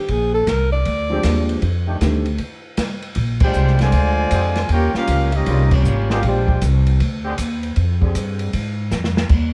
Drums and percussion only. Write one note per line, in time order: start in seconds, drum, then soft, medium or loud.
0.08 kick soft
0.08 ride medium
0.47 kick soft
0.47 snare medium
0.47 hi-hat pedal medium
0.47 ride medium
0.85 kick soft
0.85 ride medium
1.23 kick soft
1.23 snare medium
1.23 hi-hat pedal medium
1.23 ride loud
1.49 ride medium
1.62 kick soft
1.62 ride medium
2.01 kick soft
2.01 snare medium
2.01 hi-hat pedal medium
2.01 ride medium
2.26 ride medium
2.38 kick soft
2.38 ride medium
2.77 kick soft
2.77 snare medium
2.77 hi-hat pedal medium
2.77 ride medium
3.02 ride medium
3.15 kick soft
3.15 ride medium
3.40 kick medium
3.40 crash medium
3.53 hi-hat pedal medium
3.67 snare soft
3.79 snare medium
3.79 ride medium
3.92 kick soft
3.92 ride medium
4.31 kick soft
4.31 hi-hat pedal medium
4.31 ride loud
4.55 snare medium
4.55 ride medium
4.69 kick soft
4.69 ride medium
4.94 snare medium
5.07 kick soft
5.07 hi-hat pedal medium
5.07 ride medium
5.32 ride medium
5.46 kick soft
5.46 ride medium
5.71 kick loud
5.71 crash medium
5.85 hi-hat pedal medium
6.10 snare medium
6.23 kick soft
6.23 ride medium
6.48 kick medium
6.62 kick soft
6.62 hi-hat pedal medium
6.62 ride medium
6.87 ride medium
7.00 kick soft
7.00 ride medium
7.38 kick soft
7.38 hi-hat pedal medium
7.38 ride medium
7.63 ride medium
7.76 kick soft
7.76 ride medium
8.02 kick medium
8.15 kick soft
8.15 hi-hat pedal medium
8.15 ride medium
8.39 ride medium
8.53 kick soft
8.53 ride medium
8.91 snare medium
8.91 hi-hat pedal medium
9.04 snare medium
9.17 snare loud
9.29 kick medium
9.29 crash medium